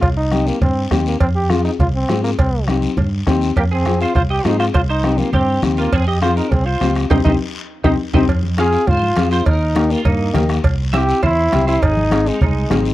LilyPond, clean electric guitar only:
\new Staff \with { instrumentName = "Clean electric guitar" } { \time 4/4 \key f \minor \tempo 4 = 204 r1 | r1 | r1 | g'8 aes'4 c''8 c''8 ees''8 aes'8 c''8 |
c''8 c''4 f'8 g'4 r8 f'8 | aes'8 ees''8 c''8 bes'8 aes'8 c''4 r8 | <g' c'' ees''>8 <g' c'' ees''>8 r4. <g' c'' ees''>8 r8 <g' c'' ees''>8 | r4 f''4 c''4. c''8 |
bes'4. f'8 ees'4. r8 | r4 e''4 c''4. c''8 | aes'4. ees'8 ees'4. r8 | }